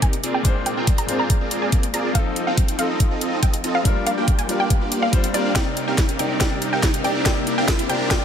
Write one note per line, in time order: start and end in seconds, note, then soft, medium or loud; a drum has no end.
0.00 0.25 C2 medium
0.00 0.22 C3 medium
0.00 0.26 C3 medium
0.00 0.22 G3 medium
0.00 0.26 A#3 medium
0.00 2.12 A#3 medium
0.00 0.14 C4 medium
0.00 0.22 D#4 medium
0.00 0.25 D#4 medium
0.00 0.14 D#4 medium
0.00 0.14 G4 medium
0.00 0.14 A#4 medium
0.00 0.26 D5 medium
0.00 2.12 D5 medium
0.00 0.14 D5 loud
0.00 0.27 G#5 loud
0.00 kick medium
0.00 closed hi-hat medium
0.00 riser medium
0.13 closed hi-hat medium
0.24 0.43 A#1 medium
0.24 2.13 G#3 medium
0.24 0.42 C4 medium
0.24 0.42 F4 medium
0.24 0.42 G#4 medium
0.24 0.42 A#4 medium
0.24 0.42 D5 loud
0.24 closed hi-hat medium
0.34 0.59 G5 medium
0.43 0.75 A#1 medium
0.43 1.05 A#2 medium
0.43 1.06 G#3 medium
0.43 0.74 C4 medium
0.43 1.06 D4 medium
0.43 0.74 F4 medium
0.43 0.74 D5 medium
0.43 kick medium
0.43 closed hi-hat medium
0.47 1.07 C5 loud
0.66 0.91 G5 medium
0.66 closed hi-hat medium
0.77 1.07 A#1 medium
0.77 1.06 C4 medium
0.77 1.06 F4 medium
0.77 1.06 G#4 medium
0.77 1.06 A#4 medium
0.77 1.06 G5 medium
0.87 kick loud
0.87 closed hi-hat medium
0.98 1.15 A#5 medium
0.98 closed hi-hat medium
1.07 1.39 A#1 medium
1.07 2.12 A#2 medium
1.07 2.12 G#3 medium
1.07 1.38 C4 medium
1.07 2.13 D4 medium
1.07 1.38 F4 medium
1.07 1.38 G#4 medium
1.07 1.38 A#4 medium
1.07 1.38 D5 medium
1.07 closed hi-hat medium
1.11 2.14 C5 medium
1.19 1.52 A#5 loud
1.30 kick medium
1.30 closed hi-hat medium
1.41 1.70 A#1 loud
1.41 1.70 C4 medium
1.41 1.70 F4 medium
1.41 1.70 G#4 medium
1.41 1.70 A#4 medium
1.41 1.70 D5 loud
1.51 closed hi-hat medium
1.62 1.87 G#5 loud
1.72 1.92 A#1 medium
1.72 1.85 C4 loud
1.72 1.85 F4 medium
1.72 kick medium
1.72 closed hi-hat medium
1.83 closed hi-hat medium
1.94 2.13 A#1 medium
1.94 2.12 C4 medium
1.94 2.12 F4 medium
1.94 2.12 G#4 medium
1.94 2.12 A#4 medium
1.94 2.12 D5 loud
1.94 2.10 A#5 medium
1.94 closed hi-hat medium
2.13 2.75 F3 medium
2.13 3.84 F3 medium
2.13 2.76 C4 medium
2.13 2.45 C4 medium
2.13 3.84 C4 medium
2.13 2.45 D#4 medium
2.13 3.84 D#4 medium
2.13 2.77 D#4 medium
2.13 2.45 F4 medium
2.13 3.84 G4 medium
2.13 2.45 A4 medium
2.13 3.84 A4 medium
2.13 2.77 A4 loud
2.13 2.40 F5 loud
2.13 kick loud
2.13 closed hi-hat medium
2.36 closed hi-hat medium
2.47 2.77 F1 medium
2.47 2.76 C4 medium
2.47 2.76 D#4 medium
2.47 2.76 F4 medium
2.47 2.76 A4 medium
2.47 2.72 F5 medium
2.47 2.76 G5 loud
2.58 kick loud
2.58 closed hi-hat medium
2.68 closed hi-hat medium
2.77 3.09 F1 loud
2.77 3.82 F3 medium
2.77 3.82 C4 medium
2.77 3.08 C4 medium
2.77 3.08 D#4 medium
2.77 3.83 D#4 medium
2.77 3.08 F4 medium
2.77 3.08 A4 medium
2.77 3.84 A4 medium
2.77 3.08 D#5 medium
2.77 3.03 F5 medium
2.77 closed hi-hat medium
3.00 kick medium
3.00 closed hi-hat medium
3.11 3.40 C4 medium
3.11 3.40 D#4 medium
3.11 3.40 F4 medium
3.11 3.40 A4 medium
3.11 3.40 D#5 loud
3.21 closed hi-hat medium
3.43 3.62 F2 medium
3.43 3.55 C4 loud
3.43 3.55 F4 medium
3.43 3.67 G5 loud
3.43 kick medium
3.43 closed hi-hat medium
3.54 closed hi-hat medium
3.64 3.83 F1 medium
3.64 3.82 C4 loud
3.64 3.82 D#4 medium
3.64 3.82 F4 medium
3.64 3.82 A4 medium
3.64 3.82 D#5 loud
3.64 closed hi-hat medium
3.75 3.99 F5 loud
3.83 4.15 G1 medium
3.83 4.46 G3 medium
3.83 7.01 G3 medium
3.83 4.15 A#3 medium
3.83 5.54 A#3 medium
3.83 4.46 D4 medium
3.83 4.15 D4 medium
3.83 4.15 F4 medium
3.83 5.54 F4 medium
3.83 4.47 F4 medium
3.83 4.15 G4 medium
3.83 4.15 D5 medium
3.83 kick medium
3.83 closed hi-hat medium
3.87 4.48 A#4 loud
4.07 4.31 F5 medium
4.07 closed hi-hat medium
4.17 4.47 G1 medium
4.17 4.47 A#3 medium
4.17 4.47 D4 medium
4.17 4.47 F4 medium
4.17 4.47 G4 medium
4.17 4.47 G5 loud
4.28 kick loud
4.28 closed hi-hat medium
4.39 4.55 G#5 medium
4.39 closed hi-hat medium
4.47 4.79 G1 loud
4.47 5.10 G3 medium
4.47 4.79 A#3 medium
4.47 5.10 D4 medium
4.47 4.79 D4 medium
4.47 4.79 F4 medium
4.47 5.11 F4 medium
4.47 4.79 G4 medium
4.47 5.12 A#4 medium
4.47 4.79 D5 loud
4.47 closed hi-hat medium
4.60 4.92 G5 loud
4.70 kick medium
4.70 closed hi-hat medium
4.81 5.11 G1 loud
4.81 5.10 A#3 medium
4.81 5.10 D4 medium
4.81 5.10 F4 medium
4.81 5.10 G4 medium
4.81 5.10 D5 loud
4.92 closed hi-hat medium
5.02 5.27 F5 medium
5.12 5.31 G3 medium
5.12 5.25 A#3 medium
5.12 5.32 D4 medium
5.12 5.25 D4 medium
5.12 5.25 F4 medium
5.12 5.32 F4 medium
5.12 5.25 G4 medium
5.12 5.32 C5 loud
5.12 5.25 D5 loud
5.12 kick medium
5.12 closed hi-hat medium
5.24 closed hi-hat medium
5.33 5.53 G1 loud
5.33 5.52 G3 medium
5.33 5.52 A#3 medium
5.33 5.53 D4 medium
5.33 5.52 D4 medium
5.33 5.52 F4 medium
5.33 5.53 F4 medium
5.33 5.52 G4 medium
5.33 5.53 A#4 medium
5.33 5.51 D5 medium
5.33 5.52 D5 loud
5.33 closed hi-hat medium
5.53 6.16 C3 medium
5.53 7.03 C3 medium
5.53 6.16 A#3 medium
5.53 8.25 A#3 medium
5.53 7.03 D#4 medium
5.53 6.17 D#4 medium
5.53 8.25 D5 medium
5.53 5.80 G5 medium
5.53 kick loud
5.53 snare soft
5.53 closed hi-hat medium
5.77 closed hi-hat medium
5.88 6.17 C2 medium
5.88 6.17 C4 medium
5.88 6.17 D#4 medium
5.88 6.17 G4 medium
5.88 6.17 A#4 medium
5.88 6.17 F5 medium
5.88 6.12 G5 medium
5.98 kick loud
5.98 snare soft
5.98 closed hi-hat medium
6.09 closed hi-hat medium
6.17 6.38 C2 loud
6.17 6.37 C3 medium
6.17 6.38 A#3 medium
6.17 6.39 C4 medium
6.17 6.39 D#4 medium
6.17 6.39 G4 medium
6.17 6.39 A#4 medium
6.17 6.39 D5 medium
6.17 6.40 D5 medium
6.17 6.39 G5 medium
6.17 closed hi-hat medium
6.39 7.01 C3 medium
6.39 7.02 A#3 medium
6.39 6.70 C4 medium
6.39 6.70 D#4 medium
6.39 7.02 D#4 medium
6.39 6.70 G4 medium
6.39 6.70 D5 medium
6.39 7.03 D5 medium
6.39 6.65 G5 medium
6.39 kick medium
6.39 snare medium
6.39 closed hi-hat medium
6.62 closed hi-hat medium
6.73 7.02 C2 medium
6.73 7.02 C4 medium
6.73 7.02 D#4 medium
6.73 7.02 G4 medium
6.73 7.02 A#4 medium
6.73 7.02 F5 medium
6.73 6.97 G5 medium
6.83 kick medium
6.83 snare medium
6.83 closed hi-hat medium
6.94 closed hi-hat medium
7.02 7.24 A#1 loud
7.02 7.22 C3 medium
7.02 8.25 G#3 medium
7.02 7.23 A#3 medium
7.02 7.24 C4 medium
7.02 7.24 D4 medium
7.02 7.24 G4 medium
7.02 7.24 A#4 medium
7.02 7.24 D5 medium
7.02 7.24 G5 medium
7.02 open hi-hat medium
7.06 7.25 D5 medium
7.24 7.86 C3 medium
7.24 7.87 A#3 medium
7.24 7.87 D4 medium
7.24 7.50 G5 loud
7.24 kick loud
7.24 snare medium
7.24 closed hi-hat medium
7.28 7.88 D5 loud
7.47 closed hi-hat medium
7.58 7.87 A#1 medium
7.58 7.87 C4 medium
7.58 7.87 D4 medium
7.58 7.87 G4 medium
7.58 7.87 A#4 medium
7.58 7.87 F5 medium
7.58 7.82 G5 medium
7.68 kick loud
7.68 snare medium
7.68 closed hi-hat medium
7.79 closed hi-hat medium
7.87 8.09 A#1 loud
7.87 8.07 C3 medium
7.87 8.08 A#3 medium
7.87 8.09 C4 medium
7.87 8.09 D4 medium
7.87 8.09 G4 medium
7.87 8.09 A#4 medium
7.87 8.09 D5 medium
7.87 8.09 G5 medium
7.87 closed hi-hat medium
7.91 8.10 D5 medium
8.09 8.25 C3 medium
8.09 8.25 A#3 medium
8.09 8.25 D4 medium
8.09 8.25 G5 medium
8.09 kick medium
8.09 snare medium
8.09 closed hi-hat medium
8.13 8.25 D5 medium